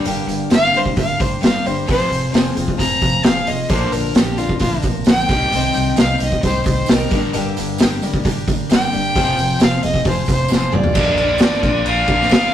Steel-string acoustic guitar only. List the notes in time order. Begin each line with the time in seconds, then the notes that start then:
0.05 G2 D3 G3 A#3 D4 G4
0.51 G3 A#3 D4 G4
0.73 G3 A#3 D4 G4
0.96 G3 A#3 D4 G4
1.41 G3 A#3 D4 G4
1.65 G3 A#3 D4 G4
1.87 F3 C4 F4 G#4
2.33 F3 C4 F4 G#4
2.55 F4 G#4
2.60 C4
2.77 F3 C4 F4 G#4
3.24 F3 C4 F4 G#4
3.47 C4 F4 G#4
3.70 A#2 D3 F3 A#3 D4 A#4
4.14 F3 A#3 D4 A#4
4.36 F3 A#3 D4 A#4
4.60 F3 A#3 D4 A#4
5.07 F3 A#3 D4 A#4
5.30 C4 D#4 G4
5.53 C3 G3 C4 D#4 G4
6.00 G3 C4 D#4 G4
6.23 C4 D#4 G4
6.44 G3 C4 D#4 G4
6.91 G3 C4 D#4 G4
7.12 G3 A#3 D4 G4
7.33 G2 D3 G3 A#3 D4 G4
7.80 G3 A#3 D4 G4
8.03 G3 A#3 D4 G4
8.24 G3 A#3 D4 G4
8.70 G3 A#3 D4 G4
8.92 G3 A#3 D4 G4
9.15 F3 C4 F4 G#4
9.60 F3 C4 F4 G#4
9.84 C4 F4 G#4
10.05 F3 C4 F4 G#4
10.49 F3 C4 F4 G#4
10.72 C4 F4 G#4
10.95 A#2 D3 F3 A#3 D4 A#4
11.19 F3 A#3 D4 A#4
11.40 F3 A#3 D4 A#4
11.63 F3 A#3 D4 A#4
12.07 F3 A#3 D4 A#4
12.29 F3 A#3 D4 A#4